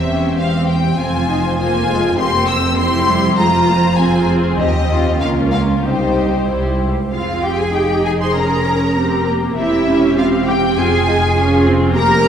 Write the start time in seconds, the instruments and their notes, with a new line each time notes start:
Already playing: double bass section E1, cello section E2, viola section C4, violin section G4 C5 E5
0.08 viola section C#4
0.38 viola section C4, violin section F5
0.69 violin section G5
0.97 double bass section F1, cello section F2, viola section C4, violin section F4 C5 G#5
1.28 viola section D#4
1.58 viola section A#3 F4, violin section F4 G#5
1.88 viola section G#3
2.18 double bass section F1, cello section F2, viola section A#3 C4, violin section G4 C5 C6
2.49 violin section E6
2.78 viola section C4 E4, violin section G4 C5 C6
3.08 viola section G3
3.37 double bass section F1, cello section F2, viola section G#3 F4, violin section F4 A#5
3.68 viola section A#3
3.97 viola section C4 F4, violin section G#4 G#5
4.28 viola section C4
4.58 double bass section D#2, cello section D#2, viola section C4, violin section G4 D#5
4.91 violin section F4
5.20 double bass section C#2, cello section C#2, viola section A#3 C#4, violin section F4 A#4 F5
5.53 violin section F5
5.84 cello section C2, double bass section C2, viola section G3 D#4, violin section G4 C5
6.48 double bass section C2, cello section C2, viola section G3 E4, violin section G4 C5
6.81 cello section C#2
7.12 double bass section F1, viola section C4 G#4, cello section F4, violin section F5
7.43 cello section G4, violin section G5
7.59 cello section G#4, violin section G#5
7.73 viola section D#4, cello section G4, violin section G5
8.05 cello section G#4, violin section G#5
8.20 cello section C5, violin section C6
8.34 viola section C#4, cello section A#4, violin section A#5
8.96 viola section C4 G4
9.27 viola section A#3
9.57 double bass section E1, viola section C4 G4, cello section E4, violin section E5
9.86 viola section C#4
10.17 viola section C4, cello section F4, violin section F5
10.48 cello section G4, violin section G5
10.77 double bass section F1, viola section C4 F4, cello section G#4, violin section G#5
11.07 viola section D#4
11.36 viola section C#4 F4
11.66 viola section C4
11.95 viola section A#3 G4, cello section A#4, violin section A#5
12.25 viola section C#4